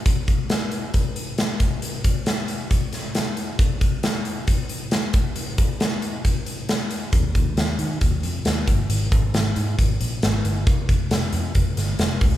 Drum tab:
HH |xxxxxxxx|xxxxxxxx|xxxxxxxx|xxxxxxxx|
SD |--o---o-|--o--oo-|--o---o-|--o---o-|
BD |oo--o--o|-o--o---|oo--o--o|-o--o---|

HH |xxxxxxxx|xxxxxxxx|xxxxxxxo|
SD |--o---o-|--o---o-|--o--oo-|
BD |oo--o--o|-o--o---|oo--o--o|